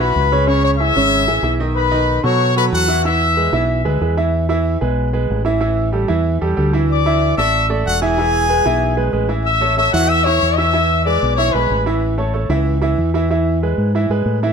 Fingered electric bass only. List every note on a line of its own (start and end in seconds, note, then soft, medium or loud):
0.00 0.12 B1 medium
0.16 0.90 C#2 medium
0.96 1.26 G#1 loud
1.28 1.42 A1 medium
1.43 2.18 B1 medium
2.24 2.69 B2 loud
2.72 3.47 E2 medium
3.52 3.83 B1 loud
3.85 4.00 D2 medium
4.01 4.76 E2 medium
4.82 5.26 B1 loud
5.30 6.04 A1 medium
6.10 6.39 E2 loud
6.42 6.57 E2 medium
6.58 7.32 D2 medium
7.38 7.83 A1 loud
7.86 8.60 E1 medium
8.66 9.10 B1 loud
9.13 9.88 A1 medium
9.94 10.38 E2 loud
10.43 11.17 E2 loud
11.23 11.52 B1 loud
11.54 11.69 B1 medium
11.70 12.45 A1 medium
12.49 12.94 C#2 loud
12.98 13.73 E2 loud
13.78 14.08 G#2 loud
14.10 14.25 G#2 medium
14.26 14.53 A2 medium